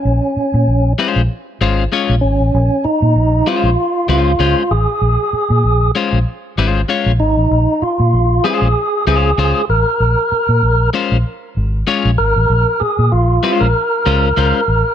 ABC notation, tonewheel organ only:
X:1
M:4/4
L:1/16
Q:"Swing 16ths" 1/4=96
K:Bbm
V:1 name="Tonewheel organ"
D6 z8 D2- | D2 E4 F4 F4 A2- | A6 z8 E2- | E2 F4 A4 A4 B2- |
B6 z8 B2- | B2 A2 F3 B8- B |]